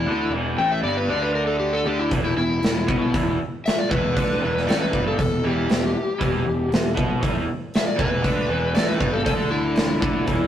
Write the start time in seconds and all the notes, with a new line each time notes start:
Already playing: E4
0.06 D2 D3 D4
0.30 E1 E2 E3
0.56 A1 A2 A3 G5
0.72 E5
0.82 G1 G2 G3 D5
0.97 B4
1.08 D2 D3 D4 D5
1.22 B4
1.35 A#4
1.47 A4
1.60 G4
1.73 A4
1.85 D2 D3 D4 G4
1.99 E4
2.10 E1 E2 E3, kick, open hi-hat
2.24 E4
2.36 E1 E2 E4
2.62 E1 E2, snare, open hi-hat
2.88 B1 B2 B3, kick
3.13 E1 E2 E3, kick, open hi-hat
3.66 E5, snare, open hi-hat
3.79 D5
3.90 E1 E2 E3 B4, kick
4.14 D2 D3 D4, kick, open hi-hat
4.41 E1 E2 E3
4.57 snare
4.66 A1 A2 A3 D5, open hi-hat
4.70 snare
4.81 B4
4.93 G1 G2 G3, kick
5.08 A4
5.18 E1 E2 A4, kick, open hi-hat
5.43 E1 E2 E3 G4
5.68 E1 E2, snare, open hi-hat
6.19 E1 E2 E3, kick, open hi-hat
6.44 E1 E2
6.69 E1 E2, open hi-hat
6.74 snare
6.94 B1 B2 B3, kick
7.20 E1 E2 E3, kick, open hi-hat
7.74 E5, snare, open hi-hat
7.87 D5
7.96 E1 E2 E3 B4, kick
8.22 D2 D3 D4, kick, open hi-hat
8.48 E1 E2 E3
8.73 A1 A2 A3 D5, snare, open hi-hat
8.88 B4
8.98 G1 G2 G3, kick
9.13 A4
9.24 D2 D3 D4 A4, kick, open hi-hat
9.51 E4
9.76 snare, open hi-hat
10.01 D2 D3 D4, kick
10.25 E1 E2 E3, kick, open hi-hat